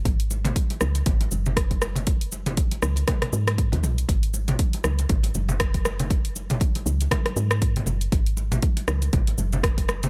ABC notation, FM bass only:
X:1
M:4/4
L:1/16
Q:"Swing 16ths" 1/4=119
K:G#m
V:1 name="FM bass" clef=bass
G,,,4 z2 C,,2 G,,,2 F,,,6- | F,,,6 C,,2 z2 G,,3 D,, B,,,2 | G,,,4 z2 C,,2 G,,,2 F,,,6- | F,,,6 C,,2 z2 G,,4 F,,,2 |
G,,,4 z2 C,,2 G,,,2 F,,,6 |]